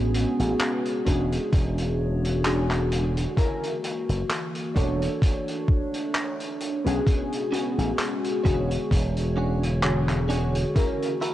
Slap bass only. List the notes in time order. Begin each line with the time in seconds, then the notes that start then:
Already playing: A1
0.39 A1
1.07 E1
1.53 E1
4.09 F#1
4.76 E1
6.86 B1
7.78 A1
8.45 E1
8.91 E1